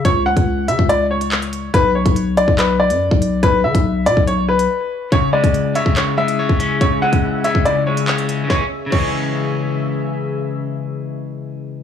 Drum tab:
CC |----------------|----------------|----------------|----------------|
HH |x--x--x-x--xxxx-|x--xx-x-x--x--x-|x--x--x-x--x----|x--xx-x-x--x--x-|
CP |------------x---|--------x-------|----------------|--------x-------|
SD |----------------|----------------|----------------|----------------|
BD |o--o---o--------|o--o---o-----o--|o--o---o--------|o--o---o-----o--|

CC |----------------|----x-----------|----------------|
HH |x--x--x-x--xxxx-|----------------|----------------|
CP |------------x---|----------------|----------------|
SD |----------------|o---------------|----------------|
BD |o--o---o--------|o---o-----------|----------------|